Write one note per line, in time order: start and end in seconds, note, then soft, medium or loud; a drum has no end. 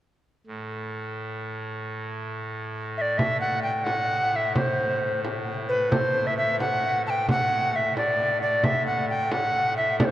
0.47 3.17 A2 soft
2.97 3.19 D5 medium
2.97 3.02 E5 medium
3.18 8.64 A2 medium
3.18 3.40 E5 medium
3.18 frame drum medium
3.40 3.62 F#5 medium
3.40 frame drum soft
3.62 3.86 G5 medium
3.62 frame drum soft
3.84 4.31 F#5 medium
3.84 frame drum medium
4.10 frame drum soft
4.31 4.37 F#5 medium
4.36 4.55 E5 medium
4.55 5.20 C5 medium
4.55 frame drum medium
4.79 frame drum soft
5.02 frame drum soft
5.24 frame drum medium
5.48 frame drum soft
5.69 5.93 B4 medium
5.91 6.28 C5 medium
5.91 frame drum medium
6.15 frame drum soft
6.27 6.37 E5 medium
6.37 6.58 E5 medium
6.37 frame drum soft
6.60 7.02 F#5 medium
6.60 frame drum medium
6.83 frame drum soft
7.07 7.27 G5 medium
7.07 7.11 A5 medium
7.29 7.77 F#5 medium
7.29 frame drum medium
7.76 7.96 E5 medium
7.97 8.39 D5 medium
7.97 frame drum medium
8.41 8.66 D5 medium
8.41 frame drum soft
8.64 10.11 A2 medium
8.64 8.86 E5 medium
8.64 frame drum medium
8.87 9.08 F#5 medium
8.87 frame drum soft
9.09 9.33 G5 medium
9.09 frame drum soft
9.32 9.77 F#5 medium
9.32 frame drum medium
9.55 frame drum soft
9.77 9.99 E5 medium
10.00 10.06 D5 medium
10.00 frame drum medium
10.05 10.11 C5 medium